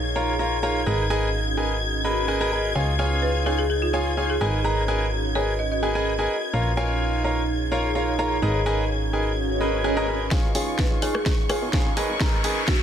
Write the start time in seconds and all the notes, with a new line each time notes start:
Already playing: A#1 D#4 G#4 C#5 F5 G#6
0.16 F4 A#4 C#5 F5 A#5
0.39 F4 A#4 C#5 F5 A#5
0.63 F4 A#4 C#5 F5 A#5
0.86 G#1 C#4 G#4 A#4 B4 D#5 A#5
1.10 F#4 G#4 A#4 B4 D#5 G#5
1.18 D#5
1.57 G#4 A#4 B4 D#5 G#5
1.72 B4
2.04 G#4 A#4 B4 D#5 B5
2.28 G#4 A#4 B4 D#5 G#5
2.41 G#4 A#4 B4 D#5 A#5
2.52 G#4 A#4 B4 D#5 B5
2.75 C#2 D#4 F4 G#4 C#5 F5 G#5
2.93 G#4
2.99 F4 G#4 C#5 F5 G#5
3.22 B4
3.46 F4 G#4 C#5 F5 G#5
3.59 G#4
3.70 G#4
3.82 F4
3.93 F4 G#4 C#5 F5 G#5
4.17 F4 G#4 C#5 F5 G#5
4.30 G#4
4.41 G#1 C#4 G#4 A#4 B4 D#5 G#5
4.54 F#4
4.64 G#4 A#4 B4 D#5 A#5
4.88 G#4 A#4 B4 D#5 G#5
5.11 B4
5.31 D#5
5.35 G#4 A#4 B4 C#5 G#5
5.59 D#5
5.72 D#5
5.83 G#4 A#4 B4 D#5 G#5
5.95 G#4 A#4 B4 D#5 G#5
6.19 G#4 A#4 B4 D#5 G#5
6.54 A#1 D#4 F4 A#4 C#5 F5 A#5
6.77 F4 A#4 C#5 F5 G#5
7.17 G#4
7.24 F4 A#4 C#5 F5 A#5
7.29 C#5
7.39 F5
7.72 F4 A#4 C#5 F5 A#5
7.95 F4 A#4 C#5 F5 A#5
8.19 F4 A#4 C#5 F5 A#5
8.42 G#1 C#4 G#4 A#4 B4 D#5 A#5
8.66 F#4 G#4 A#4 B4 D#5 G#5
9.13 G#4 A#4 B4 D#5 G#5
9.28 B4 D#5
9.37 swell
9.61 G#4 A#4 B4 D#5 B5
9.84 G#4 A#4 B4 D#5 G#5
9.97 G#4 A#4 B4 D#5 A#5
10.08 G#4 A#4 B4 D#5 B5
10.31 D#4 F4 G#4 C#5 F5 G#5 C#6, kick, snare, riser
10.45 G#4
10.55 C#2 F4 G#4 C#5 F5 G#5, open hi-hat
10.78 B4, kick, snare
10.91 C#2
10.98 C#5
11.02 C#2 F4 G#4 C#5 F5 G#5, open hi-hat
11.15 G#4, cross-stick
11.26 C#2 G#4, kick, snare
11.49 F4 G#4 C#5 F5 G#5, cross-stick, open hi-hat
11.62 B2
11.73 F4 G#4 C#5 F5 G#5, kick, snare
11.86 C#3
11.97 G#1 C#4 G#4 A#4 B4 D#5 G#5, open hi-hat
12.10 G#1
12.20 G#4 A#4 B4 D#5 A#5, kick, snare
12.35 B4
12.44 G#1 G#4 A#4 B4 D#5 G#5, open hi-hat
12.51 F#4
12.67 F#4 D#5, kick, snare